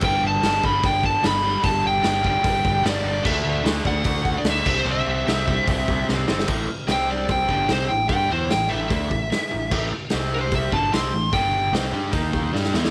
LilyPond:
<<
  \new Staff \with { instrumentName = "Lead electric guitar" } { \time 4/4 \key g \lydian \tempo 4 = 149 g''8 a''4 b''8 g''8 a''8 b''4 | a''8 g''4 g''4. d''4 | e''4 r8 fis''4~ fis''16 d''16 e''8. c''16 | e''2. r4 |
r4 g''8 d''8 g''8 g''8 c''8 g''8 | g''8 c''8 g''8 e''2~ e''8~ | e''8 r4 c''8 e''8 a''8 c'''4 | g''4 r2. | }
  \new Staff \with { instrumentName = "Overdriven electric guitar" } { \clef bass \time 4/4 \key g \lydian <g, d g>4 <g, d g>8 <g, d g>8 <g, d g>4 <g, d g>8 <g, d g>8 | <g, d g>4 <g, d g>8 <g, d g>8 <g, d g>4 <g, d g>8 <g, d g>8 | <d a d'>4 <d a d'>8 <d a d'>8 <d a d'>4 <d a d'>8 <c g c'>8 | <c g c'>4 <c g c'>8 <c g c'>8 <c g c'>4 <c g c'>8 <c g c'>8 |
<a, e a>8 r8 <c g c'>4. <g, d g>8 <c g c'>8 <a, e>8 | <g d' g'>8 <e b e'>8 <a, e>8 <a, e a>8 <d a d'>8 <a, e>8 r8 <a, e>8 | <a, e a>8 r8 <c g c'>4. <g, d g>8 <c g c'>8 <a, e>8 | <g, d g>4 <c g c'>8 <g d' g'>8 <dis ais dis'>4 <g d' g'>8 <e b e'>8 | }
  \new Staff \with { instrumentName = "Picked electric bass" } { \clef bass \time 4/4 \key g \lydian g,,8 g,,8 g,,8 g,,8 g,,4 g,,4 | g,,8 g,,8 g,,4 g,,8 g,,8 g,,8 g,,8 | d,8 d,8 d,8 d,8 d,4 d,8 c,8 | c,8 c,8 c,4 c,8 c,8 c,8 g,,8 |
a,,8 r8 c,4. g,,8 c,8 a,,8 | g,8 e,8 a,,8 a,,8 d,8 a,,8 r8 a,,8 | a,,8 r8 c,4. g,,8 c,8 a,,8 | g,,4 c,8 g,8 dis,4 g,8 e,8 | }
  \new DrumStaff \with { instrumentName = "Drums" } \drummode { \time 4/4 <cymc bd>4 <hho sn>8 bd8 <hho bd>8 bd8 <hho sn>4 | <hho bd>4 <hho sn>8 bd8 <hho bd>8 bd8 <hho sn>4 | <cymc bd>4 <hho sn>8 bd8 <hho bd>8 bd8 <hho sn>8 <cymc bd>8 | r4 <hho sn>8 bd8 <hho bd>8 bd8 sn8 sn16 sn16 |
<cymc bd>4 <hho sn>4 <hho bd>8 bd8 <hho sn>4 | <hho bd>4 <hho sn>4 <hho bd>8 bd8 <hho sn>4 | <cymc bd>4 <hho sn>4 <hho bd>8 bd8 <hho sn>4 | <hho bd>4 <hho sn>4 <hho bd>8 bd8 sn16 sn16 sn16 sn16 | }
>>